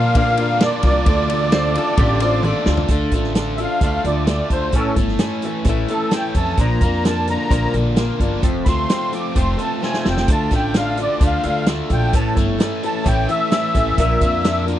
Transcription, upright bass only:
0.00 0.62 A#2 medium
0.83 1.01 C2 medium
1.06 1.75 D2 medium
1.98 2.50 A1 loud
2.67 2.84 D2 medium
2.89 3.07 D2 medium
3.12 3.64 A1 medium
3.81 3.99 D2 medium
4.04 4.39 D2 medium
4.50 4.73 D2 medium
4.73 4.91 A1 medium
4.96 5.14 G1 medium
5.65 5.83 A1 loud
6.35 6.53 F2 medium
6.58 6.76 A#1 medium
6.81 7.34 F2 medium
7.50 7.68 A#1 medium
7.74 8.09 A#1 medium
8.20 8.43 G1 medium
8.43 8.61 F1 medium
8.66 8.84 D2 medium
9.36 9.54 F1 loud
10.06 10.24 F1 medium
10.28 10.46 D2 medium
10.51 11.04 A1 medium
11.21 11.39 D2 medium
11.45 11.80 D2 medium
11.90 12.14 A#1 medium
12.14 12.32 A1 medium
12.37 12.55 G1 medium
13.06 13.24 A1 loud
13.75 13.93 A1 medium
13.98 14.16 A#1 medium
14.21 14.74 F2 medium

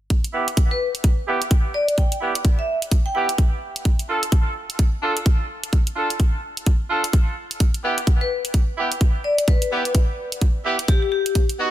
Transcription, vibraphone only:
0.71 0.83 B4 medium
1.74 1.90 D5 medium
1.98 2.13 G5 medium
2.59 2.70 E5 medium
3.06 3.12 G5 medium
3.15 3.24 G5 medium
8.21 8.33 B4 medium
9.24 9.40 D5 medium
9.48 9.95 B4 medium
10.88 10.97 G4 medium
11.02 11.08 G4 medium
11.12 11.41 G4 medium

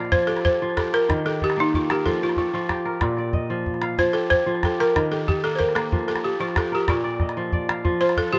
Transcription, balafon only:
0.12 0.28 C5 loud
0.27 0.44 A4 medium
0.45 0.78 C5 medium
0.77 0.93 A4 medium
0.94 1.23 A#4 medium
1.26 1.42 A4 medium
1.44 1.59 G4 medium
1.60 1.74 D#4 medium
1.75 1.91 F4 medium
1.91 2.07 G4 medium
2.06 2.22 A4 medium
2.23 2.37 F4 medium
2.38 2.54 F4 medium
2.55 3.15 F4 medium
3.99 4.15 C5 medium
4.13 4.31 A4 medium
4.30 4.64 C5 loud
4.65 4.79 A4 medium
4.80 5.13 A#4 medium
5.12 5.19 A4 medium
5.28 5.43 G4 medium
5.44 5.56 A4 medium
5.55 5.76 A#4 medium
5.55 5.60 C5 medium
5.75 6.07 A4 medium
6.08 6.25 A4 medium
6.24 6.41 G4 medium
6.41 6.57 F4 medium
6.58 6.74 A4 medium
6.75 6.90 G4 medium
6.90 7.50 F4 medium
8.01 8.18 C5 loud
8.18 8.34 A4 medium
8.33 8.39 G4 medium

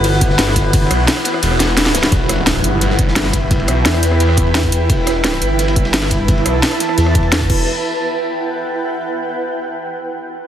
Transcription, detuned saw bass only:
0.91 1.07 B1 loud
1.43 2.11 E1 loud
2.12 2.63 E1 loud
2.64 2.97 G1 loud
2.99 3.15 G1 loud
3.16 3.67 G1 medium
3.68 3.84 B1 loud
3.86 4.71 E2 loud
4.72 4.88 E2 medium
4.90 5.40 E1 loud
5.42 5.75 G1 loud
5.76 5.92 G1 loud
5.94 6.44 G1 medium
6.46 6.62 B1 medium
6.98 7.49 E2 loud
7.50 7.66 E1 loud

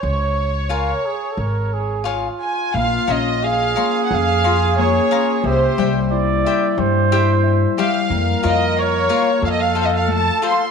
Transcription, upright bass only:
0.03 0.91 C#2 medium
1.37 2.27 G#1 medium
2.74 2.97 A#1 medium
3.08 3.74 A#1 medium
4.11 4.98 F2 medium
5.44 5.66 C2 medium
5.78 6.43 C2 medium
6.77 7.64 G2 medium
8.10 8.32 F2 medium
8.44 9.08 F2 medium
9.42 10.28 F2 medium

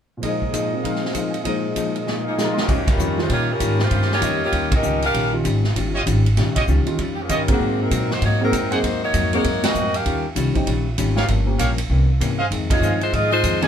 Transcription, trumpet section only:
0.22 1.43 F4 soft
0.22 1.43 G#4 soft
0.22 0.82 A#4 soft
0.22 1.43 D#5 medium
0.83 1.43 A#4 soft
0.83 1.45 C5 medium
0.83 1.45 F5 medium
1.44 2.67 F4 medium
1.44 2.68 G#4 medium
1.44 2.68 A#4 soft
1.44 2.66 D#5 medium
2.22 2.32 F5 soft
2.29 2.40 G#5 soft
2.37 2.51 A#5 soft
2.45 2.57 C6 soft
2.52 2.62 D#6 soft
2.60 2.71 F5 soft
2.68 3.53 F4 soft
2.68 3.53 G4 soft
2.68 3.53 C#5 soft
2.68 3.53 D#5 medium
4.21 4.68 F4 medium
4.21 4.68 G4 medium
4.21 4.68 C#5 medium
4.21 4.68 D#5 medium
5.95 6.03 F4 medium
5.95 6.03 G4 medium
5.95 6.03 C#5 medium
5.95 6.03 D#5 medium
6.56 6.64 F4 medium
6.56 6.64 G4 medium
6.56 6.64 C#5 medium
6.56 6.64 D#5 medium
7.29 7.42 F4 medium
7.29 7.42 G4 medium
7.29 7.42 C#5 medium
7.29 7.42 D#5 medium
8.71 8.79 G#4 medium
8.71 8.79 A#4 medium
8.71 8.79 C5 medium
8.71 8.79 F#5 medium
9.63 9.71 G#4 medium
9.63 9.71 A#4 medium
9.63 9.71 C5 medium
9.63 9.71 F#5 medium
11.16 11.24 G4 medium
11.16 11.24 A#4 medium
11.16 11.24 C#5 medium
11.16 11.24 F5 medium
11.59 11.72 G4 medium
11.59 11.72 A#4 medium
11.59 11.72 C#5 medium
11.59 11.72 F5 medium
12.39 12.47 G#4 medium
12.39 12.47 C5 medium
12.39 12.47 D#5 medium
12.39 12.47 F5 medium
12.81 12.94 G#4 medium
12.81 12.94 C5 medium
12.81 12.94 D#5 medium
12.81 12.94 F5 medium
13.62 13.68 A#4 medium
13.62 13.68 C5 medium
13.62 13.68 D5 medium
13.62 13.68 G#5 medium

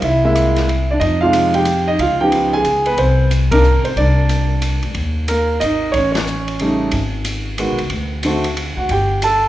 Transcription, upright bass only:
0.02 0.97 C2 medium
1.01 1.95 F2 medium
1.99 2.61 C#2 medium
2.64 2.95 C#2 medium
2.97 3.80 C2 medium
3.84 muted upright bass stroke soft
3.96 4.79 C2 medium
4.83 4.94 D2 medium
4.95 5.57 D#2 medium
5.61 5.92 G#1 medium
5.93 6.88 A1 medium
6.91 7.65 G#1 medium
7.68 7.79 B1 soft
7.80 7.89 C#2 medium
7.90 8.73 D2 medium
8.77 8.88 D2 medium
8.89 9.48 G1 medium

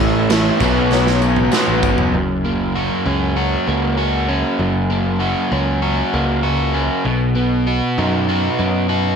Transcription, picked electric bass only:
0.00 0.49 A1 medium
0.61 1.47 B1 medium
1.68 1.82 A1 medium
1.83 1.97 G#1 medium
1.99 2.13 F#1 medium
2.13 2.88 F#1 medium
3.06 3.56 C#2 medium
3.67 4.42 C#2 medium
4.59 5.34 F#1 medium
5.52 6.02 C#2 medium
6.14 6.88 C#2 medium
7.05 7.80 B1 medium
7.98 8.47 F#2 medium
8.59 9.16 F#2 medium

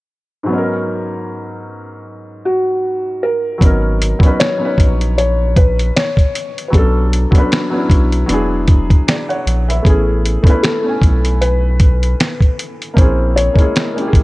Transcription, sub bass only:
3.61 4.14 G#1 loud
4.78 5.91 A#1 medium
6.74 7.26 B1 loud
7.90 8.24 B1 medium
8.29 8.96 E1 loud
9.46 9.80 A#1 medium
9.85 10.38 A1 loud
11.02 12.15 B1 medium
12.97 13.49 A#1 loud
14.14 14.23 A#1 medium

